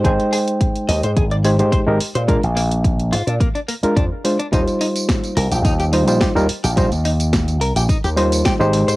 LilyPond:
<<
  \new Staff \with { instrumentName = "Clean electric guitar" } { \time 4/4 \key ees \major \tempo 4 = 107 aes'16 r16 aes'16 r8. ees''16 c''16 aes'16 d''16 aes'16 r16 c''16 r8 c''16 | bes16 r16 bes16 r8. f'16 d'16 bes16 d'16 bes16 r16 d'16 r8 d'16 | ees'16 r16 ees'16 r8. bes'16 g'16 ees'16 g'16 ees'16 r16 g'16 r8 g'16 | ees'16 r16 ees'16 r8. bes'16 g'16 ees'16 g'16 ees'16 r16 g'16 r8 c''16 | }
  \new Staff \with { instrumentName = "Reed electric piano" } { \time 4/4 \key ees \major <aes ees' c'' g''>2~ <aes ees' c'' g''>8 <aes ees' g' c''>16 <aes ees' g' c''>8 <aes ees' g' bes'>16 r8 | <aes d' f' bes'>16 r2 r8 <aes d' f' bes'>16 r8 <aes d' f' c''>16 r16 | <g ees' f' c''>2~ <g ees' f' c''>8 <g ees' f' c''>16 <g ees' f' c''>8 <g ees' f' bes'>16 r8 | <g ees' f' c''>16 r2 r16 <g ees' f' c''>8. <aes ees' g' c''>8. | }
  \new Staff \with { instrumentName = "Slap bass" } { \clef bass \time 4/4 \key ees \major aes,,16 r4 r16 ees,16 aes,16 aes,,8. aes,16 r16 aes,,16 r16 bes,16~ | bes,16 bes,,4~ bes,,16 aes,16 bes,16 r4 f,16 r8. | ees,16 r4 r16 c,16 bes,,16 ees,8. bes,,16 r16 ees,16 r16 bes,,16~ | bes,,16 ees,4~ ees,16 c,16 bes,,16 r16 ees,8. r16 aes,,8 aes,16 | }
  \new DrumStaff \with { instrumentName = "Drums" } \drummode { \time 4/4 <hh bd>16 hh16 hho16 hh16 <hh bd>16 hh16 hho16 hh16 <hh bd>16 hh16 hho16 hh16 <hh bd>8 hho16 hh16 | <hh bd>16 hh16 hho16 hh16 <hh bd>16 hh16 hho16 hh16 <hh bd>16 hh16 hho16 hh16 <hh bd>8 hho16 hh16 | <hh bd tamb>16 <hh tamb>16 hho16 <hh tamb>16 <hh bd sn tamb>16 <hh tamb>16 hho16 <hh tamb>16 <hh bd tamb>16 <hh tamb>16 hho16 <hh tamb>16 <hh bd sn tamb>16 tamb16 hho16 <hh tamb>16 | <hh bd tamb>16 <hh tamb>16 hho16 <hh tamb>16 <hh bd sn tamb>16 <hh tamb>16 hho16 <hh tamb>16 <hh bd tamb>16 <hh tamb>16 hho16 <hh tamb>16 <hh bd sn tamb>16 tamb16 hho16 <hh tamb>16 | }
>>